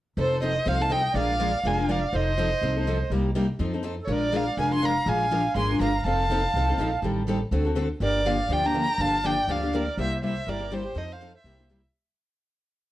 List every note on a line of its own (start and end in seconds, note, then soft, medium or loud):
0.17 0.56 F1 medium
0.17 0.35 F3 medium
0.17 0.36 C4 medium
0.17 0.36 D#4 medium
0.17 0.36 A4 medium
0.17 0.41 A4 medium
0.17 0.42 C5 medium
0.41 0.52 F3 medium
0.41 0.52 C4 medium
0.41 0.53 D#4 medium
0.41 0.53 A4 medium
0.41 0.64 C5 medium
0.41 0.69 D#5 medium
0.65 1.05 C2 medium
0.65 0.79 F3 medium
0.65 0.80 C4 medium
0.65 0.80 D#4 medium
0.65 0.79 A4 medium
0.65 0.81 C5 medium
0.65 0.84 F5 medium
0.80 0.89 C4 soft
0.80 0.90 D#4 soft
0.80 0.90 A4 soft
0.80 0.91 F5 medium
0.80 0.94 A5 medium
0.90 1.01 F3 medium
0.90 1.01 C4 medium
0.90 1.01 D#4 medium
0.90 1.01 A4 medium
0.90 1.15 D#5 medium
0.90 1.16 G5 medium
1.13 1.54 A#1 medium
1.13 1.33 F3 medium
1.13 1.33 G#3 medium
1.13 1.34 D4 medium
1.13 1.34 F4 medium
1.13 1.34 A#4 medium
1.13 1.60 D5 medium
1.18 1.69 F5 loud
1.39 1.50 F3 medium
1.39 1.50 G#3 medium
1.39 1.50 D4 medium
1.39 1.50 F4 medium
1.39 1.51 A#4 medium
1.63 2.03 F1 medium
1.63 1.78 F3 medium
1.63 1.78 G#3 medium
1.63 1.78 D4 medium
1.63 1.78 F4 medium
1.63 1.76 A#4 medium
1.63 1.89 F5 medium
1.63 1.93 G#5 medium
1.77 1.88 D4 soft
1.77 1.88 F4 soft
1.77 1.88 A#4 medium
1.88 1.99 F3 medium
1.88 1.99 G#3 medium
1.88 1.99 D4 medium
1.88 1.99 F4 medium
1.88 1.99 A#4 medium
1.88 2.13 D5 medium
1.88 2.17 F5 medium
2.13 2.52 F1 medium
2.13 2.31 F3 medium
2.13 2.31 C4 medium
2.13 2.31 D#4 medium
2.13 2.32 A4 medium
2.13 3.11 C5 medium
2.13 3.12 D#5 medium
2.38 2.48 F3 medium
2.38 2.48 C4 medium
2.38 2.48 D#4 medium
2.38 2.48 A4 medium
2.61 3.01 C2 medium
2.61 2.75 F3 medium
2.61 2.76 C4 medium
2.61 2.76 D#4 medium
2.61 2.75 A4 medium
2.77 2.86 C4 soft
2.77 2.86 D#4 medium
2.77 2.86 A4 medium
2.87 2.97 F3 medium
2.87 2.97 C4 medium
2.87 2.97 D#4 medium
2.87 2.97 A4 medium
3.10 3.49 C2 medium
3.10 3.29 C3 medium
3.10 3.29 G3 medium
3.10 3.29 A#3 medium
3.10 3.30 D#4 medium
3.10 3.30 G4 medium
3.35 3.46 C3 medium
3.35 3.46 G3 medium
3.35 3.46 A#3 medium
3.35 3.46 D#4 medium
3.35 3.46 G4 medium
3.59 3.99 F2 medium
3.59 3.73 F3 medium
3.59 3.73 C4 medium
3.59 3.73 D#4 medium
3.59 3.72 A4 medium
3.74 3.83 C4 soft
3.74 3.83 D#4 medium
3.74 3.83 A4 soft
3.83 3.94 F3 medium
3.83 3.94 C4 medium
3.83 3.94 D#4 medium
3.83 3.95 A4 medium
4.02 4.08 A4 medium
4.02 4.13 C#5 medium
4.07 4.47 A#1 medium
4.07 4.26 F3 medium
4.07 4.27 G#3 medium
4.07 4.27 D4 medium
4.07 4.27 F4 medium
4.07 4.27 A#4 medium
4.07 4.34 A#4 medium
4.12 4.38 D5 medium
4.32 4.43 F3 medium
4.32 4.43 G#3 medium
4.32 4.43 D4 medium
4.32 4.44 F4 medium
4.32 4.44 A#4 medium
4.32 4.58 D5 medium
4.32 4.59 F5 medium
4.57 4.97 F1 medium
4.57 4.71 F3 medium
4.57 4.71 G#3 medium
4.57 4.72 D4 medium
4.57 4.71 F4 medium
4.57 4.70 A#4 medium
4.57 4.72 F5 medium
4.57 4.72 G#5 medium
4.71 4.81 D4 soft
4.71 4.82 F4 soft
4.71 4.82 A#4 soft
4.71 4.82 G#5 medium
4.71 4.87 C6 medium
4.82 4.92 F3 medium
4.82 4.92 G#3 medium
4.82 4.93 D4 medium
4.82 4.93 F4 medium
4.82 4.93 A#4 medium
4.82 5.06 F5 medium
4.82 5.10 A#5 medium
5.06 5.46 A#1 medium
5.06 5.25 F3 medium
5.06 5.25 G#3 medium
5.06 5.25 D4 medium
5.06 5.25 F4 medium
5.06 5.26 A#4 medium
5.06 5.56 F5 medium
5.06 5.57 G#5 loud
5.31 5.42 F3 medium
5.31 5.42 G#3 medium
5.31 5.42 D4 medium
5.31 5.42 F4 medium
5.31 5.42 A#4 medium
5.55 5.76 G#1 medium
5.55 5.69 F3 medium
5.55 5.69 G#3 medium
5.55 5.69 D4 medium
5.55 5.69 F4 medium
5.55 5.68 A#4 medium
5.55 5.79 G#5 medium
5.55 5.79 C6 medium
5.69 5.80 D4 soft
5.69 5.80 F4 soft
5.69 5.80 A#4 medium
5.80 6.01 G1 medium
5.80 5.91 F3 medium
5.80 5.91 G#3 medium
5.80 5.91 D4 medium
5.80 5.91 F4 medium
5.80 5.91 A#4 medium
5.80 6.04 F5 medium
5.80 6.04 A#5 medium
6.05 6.44 F1 medium
6.05 6.24 F3 medium
6.05 6.24 C4 medium
6.05 6.24 D#4 medium
6.05 6.24 A4 medium
6.05 7.00 F5 medium
6.05 7.00 A5 medium
6.31 6.41 F3 medium
6.31 6.41 C4 medium
6.31 6.41 D#4 medium
6.31 6.41 A4 medium
6.54 6.75 C2 medium
6.54 6.69 F3 medium
6.54 6.69 C4 medium
6.54 6.69 D#4 medium
6.54 6.68 A4 medium
6.69 6.80 C4 soft
6.69 6.79 D#4 soft
6.69 6.79 A4 medium
6.78 6.99 A#1 medium
6.78 6.90 F3 medium
6.78 6.90 C4 medium
6.78 6.90 D#4 medium
6.78 6.90 A4 medium
7.02 7.42 A1 medium
7.02 7.22 D#3 medium
7.02 7.22 G3 medium
7.02 7.22 C4 medium
7.02 7.22 G4 medium
7.02 7.22 A4 medium
7.28 7.38 D#3 medium
7.28 7.38 G3 medium
7.28 7.39 C4 medium
7.28 7.39 G4 medium
7.28 7.39 A4 medium
7.51 7.91 D2 medium
7.51 7.66 D3 medium
7.51 7.66 A3 medium
7.51 7.66 C4 medium
7.51 7.65 F#4 medium
7.51 7.64 A4 medium
7.65 7.75 C4 soft
7.65 7.75 F#4 soft
7.65 7.76 A4 medium
7.75 7.86 D3 medium
7.75 7.87 A3 medium
7.75 7.87 C4 medium
7.75 7.87 F#4 medium
7.75 7.87 A4 medium
8.00 8.40 G1 medium
8.00 8.19 D3 medium
8.00 8.19 F3 medium
8.00 8.20 A#3 medium
8.00 8.20 D4 medium
8.00 8.20 G4 medium
8.00 8.25 A#4 medium
8.00 8.29 D5 medium
8.25 8.36 D3 medium
8.25 8.36 F3 medium
8.25 8.36 A#3 medium
8.25 8.36 D4 medium
8.25 8.37 G4 medium
8.25 8.51 D5 medium
8.25 8.54 F5 medium
8.49 8.89 D2 medium
8.49 8.64 D3 medium
8.49 8.64 F3 medium
8.49 8.64 A#3 medium
8.49 8.64 D4 medium
8.49 8.63 G4 medium
8.53 8.66 D5 medium
8.53 8.68 G5 medium
8.64 8.74 A#3 soft
8.64 8.74 D4 soft
8.64 8.74 G4 medium
8.64 9.00 G5 medium
8.64 9.02 A#5 loud
8.74 8.85 D3 medium
8.74 8.85 F3 medium
8.74 8.86 A#3 medium
8.74 8.86 D4 medium
8.74 8.86 G4 medium
8.98 9.38 G1 medium
8.98 9.17 D3 medium
8.98 9.18 F3 medium
8.98 9.18 A#3 medium
8.98 9.18 D4 medium
8.98 9.18 G4 medium
8.98 9.25 F5 medium
8.98 9.27 A5 loud
9.24 9.34 D3 medium
9.24 9.34 F3 medium
9.24 9.35 A#3 medium
9.24 9.35 D4 medium
9.24 9.35 G4 medium
9.24 9.47 D5 medium
9.24 9.53 G5 medium
9.47 9.87 D2 medium
9.47 9.62 D3 medium
9.47 9.62 F3 medium
9.47 9.62 A#3 medium
9.47 9.63 D4 medium
9.47 9.61 G4 medium
9.47 9.73 D5 medium
9.47 9.76 F5 medium
9.63 9.73 A#3 soft
9.63 9.74 D4 medium
9.63 9.73 G4 medium
9.73 9.84 D3 medium
9.73 9.84 F3 medium
9.73 9.84 A#3 medium
9.73 9.85 D4 medium
9.73 9.85 G4 medium
9.73 9.98 A#4 medium
9.73 9.99 D5 medium
9.97 10.37 C2 medium
9.97 10.16 C3 medium
9.97 10.16 G3 medium
9.97 10.17 A#3 medium
9.97 10.17 E4 medium
9.97 10.17 G4 medium
9.97 10.21 C5 medium
9.97 10.22 E5 medium
10.22 10.33 C3 medium
10.22 10.33 G3 medium
10.22 10.33 A#3 medium
10.22 10.34 E4 medium
10.22 10.33 G4 medium
10.22 10.46 C5 medium
10.22 10.50 E5 medium
10.47 10.86 G1 medium
10.47 10.61 C3 medium
10.47 10.61 G3 medium
10.47 10.61 A#3 medium
10.47 10.60 E4 medium
10.47 10.59 G4 medium
10.47 10.72 A#4 medium
10.47 10.76 D5 medium
10.60 10.70 A#3 soft
10.60 10.71 E4 medium
10.60 10.71 G4 medium
10.70 10.82 C3 medium
10.70 10.82 G3 medium
10.70 10.82 A#3 medium
10.70 10.82 E4 medium
10.70 10.82 G4 medium
10.70 10.97 G4 medium
10.70 10.99 C5 medium
10.95 11.35 F2 medium
10.95 11.14 F3 medium
10.95 11.14 C4 medium
10.95 11.15 D#4 medium
10.95 11.15 A4 medium
10.95 11.09 C5 medium
10.95 11.14 D#5 medium
11.11 11.33 C5 medium
11.11 11.36 F5 medium
11.21 11.31 F3 medium
11.21 11.31 C4 medium
11.21 11.32 D#4 medium
11.21 11.32 A4 medium
11.34 11.80 C5 medium
11.34 11.82 E5 medium
11.44 11.84 C2 medium
11.44 11.59 C3 medium
11.44 11.59 G3 medium
11.44 11.59 A#3 medium
11.44 11.59 E4 medium
11.44 11.57 G4 medium
11.59 11.69 A#3 soft
11.59 11.69 E4 soft
11.59 11.69 G4 medium
11.69 11.80 C3 medium
11.69 11.80 G3 medium
11.69 11.80 A#3 medium
11.69 11.81 E4 medium
11.69 11.81 G4 medium